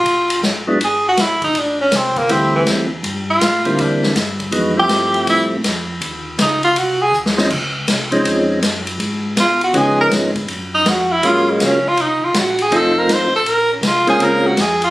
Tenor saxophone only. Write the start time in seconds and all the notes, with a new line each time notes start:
Already playing: F4
0.84 G#4
1.08 F#4
1.21 E4
1.44 D#4
1.59 D4
1.81 C#4
1.96 C4
2.18 A#3
2.32 C4
2.56 E3
3.30 F4
3.82 D4
4.79 G4
5.30 E4
6.42 D#4
6.64 F4
6.78 F#4
7.02 G#4
9.40 F4
9.64 F#4
9.77 G#4
10.01 A#4
10.74 D#4
10.89 F#4
11.12 E4
11.26 F4
11.50 G#3
11.64 C#4
11.88 F4
12.01 D#4
12.25 F4
12.39 F#4
12.62 G#4
12.76 A4
12.99 A#4
13.13 C5
13.36 A4
13.49 A#4
13.73 C#4
13.87 F4
14.10 G#4
14.23 A#4
14.47 F#4
14.61 G#4
14.84 F4